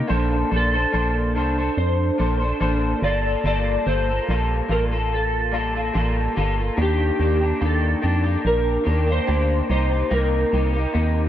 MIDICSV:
0, 0, Header, 1, 4, 480
1, 0, Start_track
1, 0, Tempo, 833218
1, 68, Time_signature, 4, 2, 24, 8
1, 6503, End_track
2, 0, Start_track
2, 0, Title_t, "Electric slide guitar"
2, 0, Program_c, 0, 29
2, 325, Note_on_c, 0, 69, 75
2, 1013, Note_off_c, 0, 69, 0
2, 1026, Note_on_c, 0, 72, 76
2, 1750, Note_off_c, 0, 72, 0
2, 1752, Note_on_c, 0, 74, 85
2, 1991, Note_off_c, 0, 74, 0
2, 1998, Note_on_c, 0, 74, 83
2, 2229, Note_on_c, 0, 72, 88
2, 2240, Note_off_c, 0, 74, 0
2, 2713, Note_off_c, 0, 72, 0
2, 2716, Note_on_c, 0, 70, 73
2, 2779, Note_off_c, 0, 70, 0
2, 2961, Note_on_c, 0, 69, 74
2, 3651, Note_off_c, 0, 69, 0
2, 3928, Note_on_c, 0, 67, 81
2, 4409, Note_off_c, 0, 67, 0
2, 4411, Note_on_c, 0, 69, 84
2, 4876, Note_off_c, 0, 69, 0
2, 4879, Note_on_c, 0, 70, 86
2, 5255, Note_on_c, 0, 72, 97
2, 5256, Note_off_c, 0, 70, 0
2, 5589, Note_off_c, 0, 72, 0
2, 5596, Note_on_c, 0, 72, 79
2, 5835, Note_on_c, 0, 70, 83
2, 5839, Note_off_c, 0, 72, 0
2, 6503, Note_off_c, 0, 70, 0
2, 6503, End_track
3, 0, Start_track
3, 0, Title_t, "Clean electric guitar"
3, 0, Program_c, 1, 27
3, 43, Note_on_c, 1, 58, 87
3, 48, Note_on_c, 1, 62, 76
3, 52, Note_on_c, 1, 69, 88
3, 55, Note_on_c, 1, 72, 93
3, 279, Note_off_c, 1, 58, 0
3, 286, Note_on_c, 1, 58, 50
3, 288, Note_off_c, 1, 62, 0
3, 291, Note_off_c, 1, 69, 0
3, 294, Note_off_c, 1, 72, 0
3, 295, Note_on_c, 1, 62, 50
3, 298, Note_on_c, 1, 69, 55
3, 300, Note_on_c, 1, 72, 48
3, 417, Note_off_c, 1, 72, 0
3, 424, Note_on_c, 1, 72, 52
3, 426, Note_off_c, 1, 69, 0
3, 429, Note_off_c, 1, 58, 0
3, 431, Note_off_c, 1, 62, 0
3, 432, Note_on_c, 1, 69, 43
3, 438, Note_on_c, 1, 62, 38
3, 526, Note_off_c, 1, 62, 0
3, 530, Note_off_c, 1, 69, 0
3, 531, Note_on_c, 1, 58, 60
3, 533, Note_on_c, 1, 62, 54
3, 535, Note_off_c, 1, 72, 0
3, 537, Note_on_c, 1, 69, 65
3, 542, Note_on_c, 1, 72, 66
3, 770, Note_off_c, 1, 58, 0
3, 774, Note_off_c, 1, 62, 0
3, 776, Note_on_c, 1, 58, 56
3, 779, Note_off_c, 1, 69, 0
3, 781, Note_on_c, 1, 62, 53
3, 785, Note_off_c, 1, 72, 0
3, 786, Note_on_c, 1, 69, 56
3, 793, Note_on_c, 1, 72, 59
3, 902, Note_off_c, 1, 72, 0
3, 908, Note_off_c, 1, 69, 0
3, 909, Note_on_c, 1, 72, 45
3, 914, Note_off_c, 1, 58, 0
3, 915, Note_on_c, 1, 69, 46
3, 917, Note_off_c, 1, 62, 0
3, 925, Note_on_c, 1, 62, 39
3, 1256, Note_off_c, 1, 62, 0
3, 1257, Note_on_c, 1, 58, 49
3, 1258, Note_off_c, 1, 69, 0
3, 1262, Note_off_c, 1, 72, 0
3, 1263, Note_on_c, 1, 62, 48
3, 1264, Note_on_c, 1, 69, 58
3, 1271, Note_on_c, 1, 72, 58
3, 1375, Note_off_c, 1, 72, 0
3, 1382, Note_on_c, 1, 72, 48
3, 1386, Note_off_c, 1, 69, 0
3, 1393, Note_off_c, 1, 62, 0
3, 1393, Note_on_c, 1, 69, 44
3, 1394, Note_off_c, 1, 58, 0
3, 1400, Note_on_c, 1, 62, 37
3, 1495, Note_off_c, 1, 62, 0
3, 1497, Note_off_c, 1, 69, 0
3, 1499, Note_off_c, 1, 72, 0
3, 1500, Note_on_c, 1, 58, 70
3, 1502, Note_on_c, 1, 62, 69
3, 1504, Note_on_c, 1, 69, 74
3, 1510, Note_on_c, 1, 72, 82
3, 1735, Note_off_c, 1, 58, 0
3, 1737, Note_on_c, 1, 55, 64
3, 1742, Note_off_c, 1, 62, 0
3, 1744, Note_on_c, 1, 58, 64
3, 1746, Note_off_c, 1, 69, 0
3, 1749, Note_off_c, 1, 72, 0
3, 1749, Note_on_c, 1, 65, 62
3, 1753, Note_on_c, 1, 69, 60
3, 1873, Note_off_c, 1, 69, 0
3, 1874, Note_off_c, 1, 55, 0
3, 1878, Note_off_c, 1, 58, 0
3, 1880, Note_on_c, 1, 69, 48
3, 1881, Note_off_c, 1, 65, 0
3, 1890, Note_on_c, 1, 65, 45
3, 1893, Note_on_c, 1, 58, 34
3, 1983, Note_off_c, 1, 58, 0
3, 1984, Note_off_c, 1, 65, 0
3, 1986, Note_on_c, 1, 55, 68
3, 1988, Note_off_c, 1, 69, 0
3, 1990, Note_on_c, 1, 58, 75
3, 1991, Note_on_c, 1, 65, 82
3, 1996, Note_on_c, 1, 69, 87
3, 2218, Note_off_c, 1, 55, 0
3, 2223, Note_off_c, 1, 58, 0
3, 2225, Note_on_c, 1, 55, 51
3, 2226, Note_off_c, 1, 65, 0
3, 2230, Note_on_c, 1, 58, 53
3, 2232, Note_off_c, 1, 69, 0
3, 2233, Note_on_c, 1, 65, 57
3, 2238, Note_on_c, 1, 69, 59
3, 2347, Note_off_c, 1, 69, 0
3, 2354, Note_on_c, 1, 69, 48
3, 2357, Note_off_c, 1, 65, 0
3, 2358, Note_off_c, 1, 55, 0
3, 2361, Note_off_c, 1, 58, 0
3, 2364, Note_on_c, 1, 65, 44
3, 2370, Note_on_c, 1, 58, 41
3, 2465, Note_off_c, 1, 69, 0
3, 2468, Note_off_c, 1, 58, 0
3, 2470, Note_off_c, 1, 65, 0
3, 2470, Note_on_c, 1, 55, 59
3, 2475, Note_on_c, 1, 58, 61
3, 2477, Note_on_c, 1, 69, 68
3, 2478, Note_on_c, 1, 65, 65
3, 2689, Note_off_c, 1, 55, 0
3, 2695, Note_off_c, 1, 58, 0
3, 2696, Note_on_c, 1, 55, 59
3, 2699, Note_off_c, 1, 65, 0
3, 2702, Note_off_c, 1, 69, 0
3, 2702, Note_on_c, 1, 58, 57
3, 2706, Note_on_c, 1, 65, 62
3, 2709, Note_on_c, 1, 69, 60
3, 2823, Note_off_c, 1, 69, 0
3, 2828, Note_off_c, 1, 65, 0
3, 2830, Note_on_c, 1, 69, 53
3, 2832, Note_off_c, 1, 58, 0
3, 2834, Note_off_c, 1, 55, 0
3, 2835, Note_on_c, 1, 65, 45
3, 2839, Note_on_c, 1, 58, 40
3, 3178, Note_on_c, 1, 55, 60
3, 3179, Note_off_c, 1, 58, 0
3, 3183, Note_off_c, 1, 65, 0
3, 3183, Note_off_c, 1, 69, 0
3, 3186, Note_on_c, 1, 58, 57
3, 3190, Note_on_c, 1, 65, 59
3, 3194, Note_on_c, 1, 69, 62
3, 3305, Note_off_c, 1, 69, 0
3, 3312, Note_on_c, 1, 69, 53
3, 3314, Note_off_c, 1, 65, 0
3, 3315, Note_off_c, 1, 55, 0
3, 3319, Note_off_c, 1, 58, 0
3, 3321, Note_on_c, 1, 65, 46
3, 3328, Note_on_c, 1, 58, 42
3, 3415, Note_off_c, 1, 58, 0
3, 3417, Note_off_c, 1, 65, 0
3, 3417, Note_on_c, 1, 55, 72
3, 3422, Note_off_c, 1, 69, 0
3, 3422, Note_on_c, 1, 58, 73
3, 3424, Note_on_c, 1, 65, 71
3, 3429, Note_on_c, 1, 69, 77
3, 3651, Note_off_c, 1, 55, 0
3, 3657, Note_on_c, 1, 55, 69
3, 3658, Note_off_c, 1, 58, 0
3, 3662, Note_off_c, 1, 65, 0
3, 3665, Note_on_c, 1, 58, 74
3, 3668, Note_off_c, 1, 69, 0
3, 3669, Note_on_c, 1, 65, 73
3, 3674, Note_on_c, 1, 69, 77
3, 3782, Note_off_c, 1, 69, 0
3, 3789, Note_on_c, 1, 69, 44
3, 3794, Note_off_c, 1, 65, 0
3, 3795, Note_off_c, 1, 55, 0
3, 3798, Note_off_c, 1, 58, 0
3, 3801, Note_on_c, 1, 65, 46
3, 3804, Note_on_c, 1, 58, 38
3, 3894, Note_off_c, 1, 58, 0
3, 3899, Note_on_c, 1, 51, 71
3, 3901, Note_on_c, 1, 58, 70
3, 3902, Note_off_c, 1, 65, 0
3, 3902, Note_off_c, 1, 69, 0
3, 3904, Note_on_c, 1, 62, 80
3, 3906, Note_on_c, 1, 67, 78
3, 4129, Note_off_c, 1, 51, 0
3, 4136, Note_off_c, 1, 58, 0
3, 4136, Note_on_c, 1, 51, 48
3, 4143, Note_off_c, 1, 62, 0
3, 4143, Note_on_c, 1, 58, 47
3, 4144, Note_off_c, 1, 67, 0
3, 4150, Note_on_c, 1, 62, 52
3, 4151, Note_on_c, 1, 67, 58
3, 4264, Note_off_c, 1, 67, 0
3, 4271, Note_on_c, 1, 67, 51
3, 4273, Note_off_c, 1, 62, 0
3, 4274, Note_off_c, 1, 51, 0
3, 4277, Note_off_c, 1, 58, 0
3, 4280, Note_on_c, 1, 62, 45
3, 4286, Note_on_c, 1, 58, 44
3, 4376, Note_off_c, 1, 58, 0
3, 4377, Note_off_c, 1, 62, 0
3, 4379, Note_on_c, 1, 51, 61
3, 4381, Note_off_c, 1, 67, 0
3, 4383, Note_on_c, 1, 58, 60
3, 4384, Note_on_c, 1, 62, 69
3, 4388, Note_on_c, 1, 67, 77
3, 4608, Note_off_c, 1, 51, 0
3, 4612, Note_off_c, 1, 58, 0
3, 4615, Note_on_c, 1, 51, 55
3, 4616, Note_off_c, 1, 62, 0
3, 4619, Note_on_c, 1, 58, 54
3, 4623, Note_off_c, 1, 67, 0
3, 4623, Note_on_c, 1, 62, 62
3, 4630, Note_on_c, 1, 67, 62
3, 4736, Note_off_c, 1, 67, 0
3, 4743, Note_on_c, 1, 67, 57
3, 4746, Note_off_c, 1, 62, 0
3, 4753, Note_off_c, 1, 51, 0
3, 4753, Note_on_c, 1, 62, 44
3, 4754, Note_off_c, 1, 58, 0
3, 4761, Note_on_c, 1, 58, 43
3, 5090, Note_off_c, 1, 58, 0
3, 5092, Note_on_c, 1, 51, 54
3, 5097, Note_off_c, 1, 62, 0
3, 5097, Note_on_c, 1, 58, 53
3, 5099, Note_off_c, 1, 67, 0
3, 5104, Note_on_c, 1, 62, 57
3, 5106, Note_on_c, 1, 67, 62
3, 5218, Note_off_c, 1, 67, 0
3, 5225, Note_on_c, 1, 67, 48
3, 5228, Note_off_c, 1, 62, 0
3, 5232, Note_off_c, 1, 51, 0
3, 5234, Note_off_c, 1, 58, 0
3, 5235, Note_on_c, 1, 62, 47
3, 5241, Note_on_c, 1, 58, 43
3, 5333, Note_off_c, 1, 62, 0
3, 5335, Note_off_c, 1, 58, 0
3, 5336, Note_off_c, 1, 67, 0
3, 5340, Note_on_c, 1, 62, 78
3, 5342, Note_on_c, 1, 58, 71
3, 5343, Note_on_c, 1, 67, 86
3, 5575, Note_off_c, 1, 58, 0
3, 5576, Note_on_c, 1, 48, 57
3, 5582, Note_off_c, 1, 62, 0
3, 5582, Note_on_c, 1, 58, 66
3, 5583, Note_off_c, 1, 67, 0
3, 5585, Note_on_c, 1, 63, 68
3, 5590, Note_on_c, 1, 67, 70
3, 5705, Note_off_c, 1, 67, 0
3, 5712, Note_on_c, 1, 67, 46
3, 5713, Note_off_c, 1, 63, 0
3, 5714, Note_off_c, 1, 48, 0
3, 5717, Note_off_c, 1, 58, 0
3, 5720, Note_on_c, 1, 63, 39
3, 5724, Note_on_c, 1, 58, 37
3, 5814, Note_off_c, 1, 58, 0
3, 5816, Note_off_c, 1, 63, 0
3, 5817, Note_on_c, 1, 48, 65
3, 5819, Note_off_c, 1, 67, 0
3, 5820, Note_on_c, 1, 58, 72
3, 5823, Note_on_c, 1, 63, 72
3, 5826, Note_on_c, 1, 67, 77
3, 6049, Note_off_c, 1, 48, 0
3, 6051, Note_off_c, 1, 58, 0
3, 6056, Note_on_c, 1, 48, 55
3, 6058, Note_on_c, 1, 58, 53
3, 6059, Note_off_c, 1, 63, 0
3, 6062, Note_off_c, 1, 67, 0
3, 6066, Note_on_c, 1, 63, 52
3, 6069, Note_on_c, 1, 67, 55
3, 6176, Note_off_c, 1, 67, 0
3, 6182, Note_on_c, 1, 67, 48
3, 6185, Note_off_c, 1, 63, 0
3, 6191, Note_off_c, 1, 58, 0
3, 6192, Note_on_c, 1, 63, 41
3, 6194, Note_off_c, 1, 48, 0
3, 6198, Note_on_c, 1, 58, 43
3, 6293, Note_off_c, 1, 58, 0
3, 6294, Note_off_c, 1, 63, 0
3, 6296, Note_on_c, 1, 48, 63
3, 6299, Note_off_c, 1, 67, 0
3, 6300, Note_on_c, 1, 58, 63
3, 6301, Note_on_c, 1, 63, 66
3, 6306, Note_on_c, 1, 67, 62
3, 6503, Note_off_c, 1, 48, 0
3, 6503, Note_off_c, 1, 58, 0
3, 6503, Note_off_c, 1, 63, 0
3, 6503, Note_off_c, 1, 67, 0
3, 6503, End_track
4, 0, Start_track
4, 0, Title_t, "FM bass"
4, 0, Program_c, 2, 39
4, 61, Note_on_c, 2, 34, 107
4, 256, Note_off_c, 2, 34, 0
4, 300, Note_on_c, 2, 34, 86
4, 495, Note_off_c, 2, 34, 0
4, 542, Note_on_c, 2, 34, 79
4, 787, Note_on_c, 2, 36, 81
4, 796, Note_off_c, 2, 34, 0
4, 980, Note_off_c, 2, 36, 0
4, 1023, Note_on_c, 2, 41, 83
4, 1217, Note_off_c, 2, 41, 0
4, 1268, Note_on_c, 2, 34, 91
4, 1460, Note_off_c, 2, 34, 0
4, 1504, Note_on_c, 2, 33, 88
4, 1698, Note_off_c, 2, 33, 0
4, 1743, Note_on_c, 2, 31, 95
4, 1937, Note_off_c, 2, 31, 0
4, 1983, Note_on_c, 2, 31, 98
4, 2177, Note_off_c, 2, 31, 0
4, 2227, Note_on_c, 2, 31, 89
4, 2419, Note_off_c, 2, 31, 0
4, 2469, Note_on_c, 2, 34, 90
4, 2661, Note_off_c, 2, 34, 0
4, 2705, Note_on_c, 2, 33, 78
4, 3403, Note_off_c, 2, 33, 0
4, 3429, Note_on_c, 2, 33, 90
4, 3621, Note_off_c, 2, 33, 0
4, 3672, Note_on_c, 2, 31, 88
4, 3862, Note_off_c, 2, 31, 0
4, 3906, Note_on_c, 2, 39, 99
4, 4099, Note_off_c, 2, 39, 0
4, 4147, Note_on_c, 2, 39, 81
4, 4339, Note_off_c, 2, 39, 0
4, 4389, Note_on_c, 2, 39, 96
4, 4581, Note_off_c, 2, 39, 0
4, 4631, Note_on_c, 2, 41, 84
4, 4822, Note_off_c, 2, 41, 0
4, 4868, Note_on_c, 2, 34, 87
4, 5060, Note_off_c, 2, 34, 0
4, 5109, Note_on_c, 2, 39, 86
4, 5300, Note_off_c, 2, 39, 0
4, 5351, Note_on_c, 2, 38, 106
4, 5542, Note_off_c, 2, 38, 0
4, 5587, Note_on_c, 2, 36, 101
4, 5779, Note_off_c, 2, 36, 0
4, 5826, Note_on_c, 2, 36, 100
4, 6019, Note_off_c, 2, 36, 0
4, 6067, Note_on_c, 2, 36, 91
4, 6259, Note_off_c, 2, 36, 0
4, 6308, Note_on_c, 2, 39, 87
4, 6500, Note_off_c, 2, 39, 0
4, 6503, End_track
0, 0, End_of_file